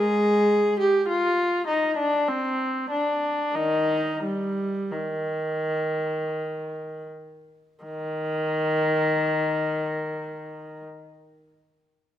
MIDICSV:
0, 0, Header, 1, 2, 480
1, 0, Start_track
1, 0, Key_signature, -3, "major"
1, 0, Tempo, 1121495
1, 464, Tempo, 1197605
1, 944, Tempo, 1265823
1, 1424, Tempo, 1388889
1, 1425, Time_signature, 3, 2, 24, 8
1, 2384, Tempo, 1485149
1, 4277, End_track
2, 0, Start_track
2, 0, Title_t, "Viola"
2, 0, Program_c, 0, 41
2, 0, Note_on_c, 0, 56, 69
2, 0, Note_on_c, 0, 68, 85
2, 326, Note_off_c, 0, 56, 0
2, 334, Note_off_c, 0, 68, 0
2, 341, Note_on_c, 0, 67, 72
2, 461, Note_off_c, 0, 67, 0
2, 464, Note_on_c, 0, 65, 73
2, 695, Note_off_c, 0, 65, 0
2, 700, Note_on_c, 0, 63, 64
2, 818, Note_on_c, 0, 62, 67
2, 819, Note_off_c, 0, 63, 0
2, 940, Note_off_c, 0, 62, 0
2, 944, Note_on_c, 0, 60, 64
2, 1180, Note_on_c, 0, 62, 57
2, 1181, Note_off_c, 0, 60, 0
2, 1419, Note_off_c, 0, 62, 0
2, 1424, Note_on_c, 0, 63, 68
2, 1426, Note_on_c, 0, 51, 52
2, 1645, Note_off_c, 0, 51, 0
2, 1658, Note_off_c, 0, 63, 0
2, 1659, Note_on_c, 0, 55, 60
2, 1894, Note_off_c, 0, 55, 0
2, 1897, Note_on_c, 0, 51, 52
2, 2625, Note_off_c, 0, 51, 0
2, 2876, Note_on_c, 0, 51, 65
2, 3843, Note_off_c, 0, 51, 0
2, 4277, End_track
0, 0, End_of_file